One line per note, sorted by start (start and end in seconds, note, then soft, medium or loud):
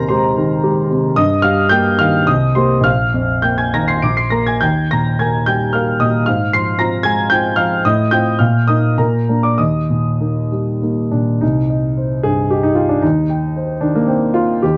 0.00 1.13 D#2 soft
0.00 0.26 C3 soft
0.00 1.19 A#4 medium
0.00 0.10 C5 medium
0.00 1.19 A#5 medium
0.00 0.09 C6 medium
0.09 0.34 G#3 soft
0.09 0.34 G4 soft
0.09 0.87 C5 soft
0.09 0.90 C6 medium
0.37 0.80 D#3 soft
0.63 0.87 G#3 soft
0.63 0.88 G4 soft
0.91 1.17 C3 soft
1.16 2.24 G2 medium
1.16 1.42 D#5 medium
1.16 1.43 D#6 medium
1.42 1.88 G3 soft
1.42 1.69 F5 medium
1.42 1.71 F6 medium
1.69 1.96 A#3 soft
1.69 1.97 G4 soft
1.69 1.97 G5 medium
1.69 1.99 G6 medium
1.99 2.28 D#3 soft
1.99 2.26 F5 medium
1.99 2.28 F6 medium
2.27 2.83 C2 medium
2.27 2.55 D#5 medium
2.27 2.56 D#6 medium
2.55 2.82 A#3 soft
2.55 2.82 G4 soft
2.55 2.83 C5 medium
2.55 2.85 C6 medium
2.81 3.96 A#1 soft
2.81 3.40 F5 medium
2.81 3.43 F6 medium
3.14 3.61 F2 soft
3.42 3.70 A#3 soft
3.42 3.70 A#4 soft
3.42 3.57 G5 soft
3.42 3.58 G6 medium
3.58 3.72 G#5 soft
3.58 3.73 G#6 medium
3.74 4.03 D#3 soft
3.74 3.88 A#5 medium
3.74 3.88 A#6 medium
3.88 4.02 C6 medium
3.88 4.02 C7 medium
4.02 4.60 A#1 soft
4.02 4.17 D6 medium
4.02 4.17 D7 medium
4.17 4.32 C6 soft
4.17 4.32 C7 medium
4.30 4.58 A#3 soft
4.30 4.58 A#4 soft
4.30 4.46 A#5 soft
4.30 4.46 A#6 medium
4.47 4.61 G#5 soft
4.47 4.61 G#6 medium
4.61 6.23 D#2 soft
4.61 4.88 G5 soft
4.61 4.90 G6 medium
4.91 5.36 A#2 soft
4.91 5.18 A#5 medium
4.91 5.19 A#6 medium
5.19 5.44 A#3 soft
5.19 5.44 A#4 soft
5.19 5.45 G#5 soft
5.19 5.46 G#6 medium
5.46 5.90 G3 soft
5.46 5.72 G5 medium
5.46 5.73 G6 medium
5.73 5.98 A#3 soft
5.73 5.98 A#4 soft
5.73 5.99 F5 soft
5.73 6.00 F6 medium
6.00 6.27 A#2 soft
6.00 6.25 D#5 medium
6.00 6.26 D#6 medium
6.26 7.80 G#2 soft
6.26 6.51 F5 medium
6.26 6.52 F6 medium
6.53 6.95 F3 soft
6.53 6.78 C6 medium
6.53 6.79 C7 medium
6.79 7.02 C4 soft
6.79 7.02 F4 soft
6.79 7.03 A#5 medium
6.79 7.04 A#6 medium
7.03 7.47 G#3 soft
7.03 7.29 G#5 medium
7.03 7.30 G#6 medium
7.30 7.55 C4 soft
7.30 7.55 F4 soft
7.30 7.56 G5 medium
7.30 7.57 G6 medium
7.56 7.84 F3 soft
7.56 7.82 F5 medium
7.56 7.84 F6 medium
7.85 8.39 A2 medium
7.85 8.11 D#5 medium
7.85 8.12 D#6 medium
8.11 8.37 C4 soft
8.11 8.37 F4 soft
8.11 8.38 G5 medium
8.11 8.39 G6 medium
8.39 8.96 A#2 soft
8.39 8.66 F5 soft
8.39 8.68 F6 medium
8.68 8.95 A#3 soft
8.68 8.95 D#4 soft
8.68 8.95 D#5 medium
8.68 8.97 D#6 medium
8.98 9.57 A#2 soft
8.98 9.41 A#4 medium
8.98 9.43 A#5 medium
9.29 9.56 A#3 soft
9.29 9.56 D4 soft
9.43 9.58 D5 soft
9.43 9.59 D6 medium
9.58 11.38 D#2 soft
9.58 10.78 D#5 soft
9.58 10.81 D#6 medium
9.90 10.39 A#2 soft
10.20 10.48 A#3 soft
10.20 10.48 D#4 soft
10.52 11.00 G3 soft
10.82 11.09 A#3 soft
10.82 11.10 D#4 soft
11.11 11.42 A#2 soft
11.11 11.42 D4 soft
11.41 13.00 C2 soft
11.41 12.24 D#4 medium
11.70 12.14 D#5 soft
11.97 12.40 C5 soft
12.23 12.67 G2 soft
12.23 12.51 G#4 medium
12.51 12.64 G4 medium
12.51 12.94 D#5 soft
12.63 12.77 D#4 medium
12.75 12.90 F4 medium
12.75 13.03 G5 soft
12.89 13.03 D4 medium
13.02 14.59 D#2 soft
13.02 13.82 D#4 medium
13.29 13.72 G5 soft
13.56 13.99 C5 soft
13.81 14.25 D#3 soft
13.81 13.95 D4 medium
13.95 14.09 A#3 medium
14.07 14.35 C4 medium
14.07 14.52 G5 soft
14.34 14.62 F4 medium
14.34 14.62 C6 soft
14.62 14.77 D#2 soft
14.62 14.77 G4 medium